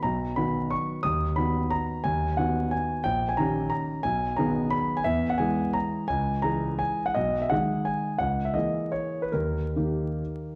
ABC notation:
X:1
M:3/4
L:1/16
Q:1/4=175
K:B
V:1 name="Grand piano"
a4 b4 c'4 | d'4 b4 a4 | g4 f4 g4 | [K:G#m] =g3 ^g a4 a4 |
g4 a4 b3 g | e3 f g4 a4 | g4 a4 g3 f | d3 e f4 g4 |
f3 e d4 c3 B | A12 |]
V:2 name="Grand piano" clef=bass
B,,,4 [D,B,F]8 | D,,4 [D,B,F]8 | D,,4 [D,B,F]8 | [K:G#m] A,,,4 [D,C=G]8 |
B,,,4 [D,B,G]8 | E,,4 [E,G,G]8 | C,,4 [E,G,G]8 | B,,,4 [D,G,G]8 |
C,,4 [E,A,G]8 | D,,4 [D,A,=G]8 |]